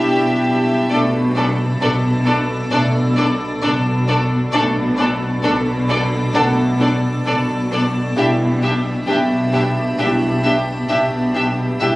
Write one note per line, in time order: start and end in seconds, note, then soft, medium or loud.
0.00 0.86 B1 medium
0.00 0.86 B2 medium
0.00 0.86 G3 medium
0.00 0.86 D4 medium
0.00 0.86 E4 medium
0.00 0.86 G4 medium
0.00 0.86 E5 medium
0.00 1.32 A5 soft
0.89 1.71 B1 medium
0.89 1.70 B2 medium
0.89 1.24 A3 medium
0.89 1.24 D4 medium
0.89 4.50 D4 medium
0.89 0.99 D4 medium
0.89 0.97 A4 medium
0.89 4.54 A4 medium
0.89 0.97 D5 medium
0.89 4.54 D5 medium
1.36 1.44 D4 medium
1.36 1.44 A4 medium
1.36 1.45 D5 medium
1.81 2.61 B1 medium
1.81 2.61 B2 medium
1.81 1.89 D4 medium
1.81 1.89 A4 medium
1.81 1.90 D5 medium
2.25 2.35 D4 medium
2.25 2.33 A4 medium
2.25 2.35 D5 medium
2.71 3.52 B1 medium
2.71 3.52 B2 medium
2.71 3.06 A3 medium
2.71 2.80 D4 medium
2.71 3.06 D4 medium
2.71 2.79 A4 medium
2.71 2.80 D5 medium
3.17 3.25 D4 medium
3.17 3.26 A4 medium
3.17 3.25 D5 medium
3.63 4.43 B1 medium
3.63 4.43 B2 medium
3.63 3.71 D4 medium
3.63 3.71 A4 medium
3.63 3.71 D5 medium
4.07 4.16 D4 medium
4.07 4.16 A4 medium
4.07 4.15 D5 medium
4.53 5.34 B1 medium
4.53 5.34 B2 medium
4.53 4.88 A3 medium
4.53 4.61 D4 medium
4.53 4.88 D4 medium
4.53 8.14 D4 medium
4.53 4.62 A4 medium
4.53 8.14 A4 medium
4.53 4.61 D5 medium
4.53 8.14 D5 medium
4.97 5.06 D4 medium
4.97 5.08 A4 medium
4.97 5.05 D5 medium
5.43 6.25 B1 medium
5.43 6.25 B2 medium
5.43 5.52 D4 medium
5.43 5.52 A4 medium
5.43 5.51 D5 medium
5.89 5.97 D4 medium
5.89 5.97 A4 medium
5.89 5.98 D5 medium
6.34 7.16 B1 medium
6.34 7.16 B2 medium
6.34 6.70 A3 medium
6.34 6.42 D4 medium
6.34 6.70 D4 medium
6.34 6.43 A4 medium
6.34 9.04 A4 soft
6.34 6.43 D5 medium
6.34 9.04 F#5 medium
6.80 6.88 D4 medium
6.80 6.89 A4 medium
6.80 6.90 D5 medium
7.26 8.07 B1 medium
7.26 8.07 B2 medium
7.26 7.34 D4 medium
7.26 7.34 A4 medium
7.26 7.35 D5 medium
7.71 7.79 D4 medium
7.71 7.80 A4 medium
7.71 7.81 D5 medium
8.16 8.98 B1 medium
8.16 8.97 B2 medium
8.16 8.52 G3 medium
8.16 8.24 D4 medium
8.16 11.78 D4 medium
8.16 8.51 E4 medium
8.16 8.25 G4 medium
8.16 11.79 G4 medium
8.16 8.26 E5 medium
8.16 11.80 E5 medium
8.62 8.70 D4 medium
8.62 8.70 G4 medium
8.62 8.72 E5 medium
9.07 9.88 B1 medium
9.07 9.88 B2 medium
9.07 9.16 D4 medium
9.07 9.15 G4 medium
9.07 9.18 E5 soft
9.53 9.61 D4 soft
9.53 9.61 G4 medium
9.53 9.63 E5 soft
9.98 10.79 B1 medium
9.98 10.80 B2 medium
9.98 10.34 G3 medium
9.98 10.07 D4 medium
9.98 10.34 E4 medium
9.98 10.06 G4 medium
9.98 10.07 E5 medium
10.44 10.52 D4 soft
10.44 10.53 G4 soft
10.44 10.53 E5 soft
10.89 11.70 B1 medium
10.89 11.70 B2 medium
10.89 10.98 D4 soft
10.89 10.97 G4 medium
10.89 10.98 E5 medium
11.34 11.42 D4 soft
11.34 11.43 G4 soft
11.34 11.43 E5 soft
11.80 11.96 B1 medium
11.80 11.96 B2 medium
11.80 11.96 G3 medium
11.80 11.88 D4 soft
11.80 11.96 D4 medium
11.80 11.96 E4 medium
11.80 11.96 G4 medium
11.80 11.89 G4 medium
11.80 11.88 E5 medium
11.80 11.96 E5 medium